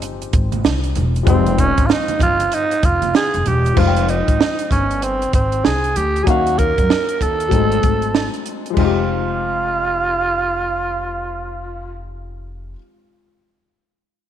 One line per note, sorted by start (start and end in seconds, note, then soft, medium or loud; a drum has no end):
0.00 0.24 G1 medium
0.00 1.21 F3 medium
0.00 1.23 G#3 medium
0.00 1.23 C4 medium
0.00 1.24 D#4 medium
0.00 1.25 G4 medium
0.00 closed hi-hat medium
0.00 shaker medium
0.22 closed hi-hat medium
0.22 shaker soft
0.33 0.60 G#1 medium
0.33 kick loud
0.33 closed hi-hat medium
0.33 shaker soft
0.52 closed hi-hat soft
0.52 high conga medium
0.52 shaker medium
0.64 0.91 C2 medium
0.64 snare loud
0.64 shaker medium
0.84 closed hi-hat soft
0.84 shaker soft
0.95 1.22 E1 medium
0.95 closed hi-hat medium
0.95 low conga medium
0.95 shaker soft
1.15 closed hi-hat soft
1.15 shaker medium
1.23 1.70 F1 loud
1.23 3.71 F3 medium
1.23 3.72 G#3 medium
1.23 3.73 C4 medium
1.23 kick loud
1.23 closed hi-hat medium
1.27 1.61 C4 medium
1.27 3.73 D#4 medium
1.27 1.36 G4 medium
1.27 shaker medium
1.36 3.78 F4 medium
1.46 closed hi-hat medium
1.46 high conga soft
1.46 shaker soft
1.58 1.88 C#4 medium
1.58 kick medium
1.58 closed hi-hat medium
1.58 low conga medium
1.58 shaker soft
1.78 1.88 G#1 medium
1.78 kick medium
1.78 closed hi-hat medium
1.78 shaker soft
1.86 1.93 F4 medium
1.86 snare loud
1.86 shaker medium
1.91 2.21 D#4 medium
2.08 closed hi-hat medium
2.08 high conga medium
2.08 shaker soft
2.19 2.47 G1 medium
2.19 2.55 F4 loud
2.19 kick medium
2.19 closed hi-hat medium
2.19 high conga soft
2.19 low conga medium
2.19 shaker soft
2.40 closed hi-hat medium
2.40 shaker soft
2.52 2.86 D#4 loud
2.52 closed hi-hat medium
2.52 shaker medium
2.71 closed hi-hat medium
2.71 shaker soft
2.83 3.10 F1 medium
2.83 3.15 F4 medium
2.83 kick loud
2.83 closed hi-hat medium
2.83 shaker soft
3.02 closed hi-hat soft
3.02 high conga medium
3.02 shaker soft
3.14 3.49 G#4 medium
3.14 snare loud
3.14 shaker medium
3.34 3.44 F1 medium
3.34 closed hi-hat soft
3.34 shaker soft
3.46 3.72 E1 medium
3.46 3.80 G4 medium
3.46 closed hi-hat medium
3.46 low conga medium
3.46 shaker soft
3.65 closed hi-hat soft
3.65 shaker medium
3.73 4.20 F1 loud
3.73 6.21 F3 medium
3.73 6.22 G#3 medium
3.73 6.23 C5 medium
3.73 kick loud
3.73 crash medium
3.78 6.24 D#4 medium
3.78 4.11 F4 medium
3.78 3.87 F4 medium
3.87 6.28 G5 medium
3.96 closed hi-hat medium
4.09 4.71 D#4 medium
4.09 closed hi-hat medium
4.28 4.38 G#1 medium
4.28 kick medium
4.28 closed hi-hat soft
4.41 snare loud
4.59 closed hi-hat medium
4.71 5.24 G1 medium
4.71 5.05 C#4 medium
4.71 kick medium
4.71 closed hi-hat medium
4.91 closed hi-hat medium
5.02 5.34 C4 medium
5.02 closed hi-hat medium
5.22 closed hi-hat soft
5.33 5.60 G#1 medium
5.33 5.67 C4 medium
5.33 kick loud
5.33 closed hi-hat medium
5.52 closed hi-hat soft
5.65 5.91 C2 medium
5.65 5.98 G#4 loud
5.65 snare loud
5.84 closed hi-hat soft
5.96 6.23 D2 medium
5.96 6.25 G4 medium
5.96 closed hi-hat medium
6.16 closed hi-hat soft
6.23 6.70 D#2 loud
6.23 7.47 F#3 medium
6.23 7.48 A#3 medium
6.23 7.49 C#4 medium
6.23 6.29 G#4 medium
6.23 kick loud
6.23 closed hi-hat medium
6.27 7.50 D#4 medium
6.27 6.60 F#4 loud
6.27 7.51 F5 medium
6.47 closed hi-hat medium
6.58 7.23 A#4 loud
6.58 kick medium
6.58 closed hi-hat medium
6.78 6.88 F#2 medium
6.78 kick medium
6.78 closed hi-hat soft
6.90 snare loud
7.09 closed hi-hat medium
7.21 7.47 D#2 medium
7.21 8.46 A4 medium
7.21 kick medium
7.21 closed hi-hat medium
7.40 closed hi-hat soft
7.48 7.78 G#1 medium
7.48 8.73 F#3 medium
7.48 8.73 A3 medium
7.48 8.74 C4 medium
7.48 kick medium
7.48 closed hi-hat medium
7.53 8.72 G#3 medium
7.53 8.75 D#4 medium
7.72 closed hi-hat soft
7.83 8.27 G#1 medium
7.83 kick medium
7.83 closed hi-hat medium
8.02 closed hi-hat soft
8.15 snare loud
8.34 closed hi-hat soft
8.46 closed hi-hat medium
8.66 closed hi-hat soft
8.70 12.70 F3 medium
8.70 12.71 G#3 medium
8.77 12.73 F1 medium
8.77 12.73 C4 medium
8.77 12.75 D#4 medium
8.77 12.04 F4 medium
8.77 kick medium
8.77 crash medium
8.84 12.76 G4 medium